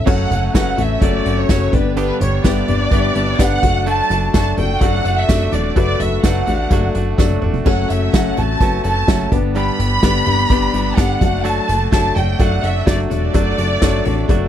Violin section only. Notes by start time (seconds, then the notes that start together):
0.09 F#5
0.56 F#5
0.81 E5
1.04 D5
1.39 C#5
1.75 B4
1.98 B4
2.23 C#5
2.47 D5
3.41 F#5
3.88 A5
4.36 A5
4.60 G5
4.83 F#5
5.19 E5
5.54 D5
5.78 D5
6.01 E5
6.25 F#5
7.67 F#5
7.90 E5
8.14 F#5
8.38 A5
8.86 A5
9.56 B5
10.98 F#5
11.46 A5
11.93 A5
12.16 G5
12.41 F#5
12.65 E5
12.87 D5
13.11 D5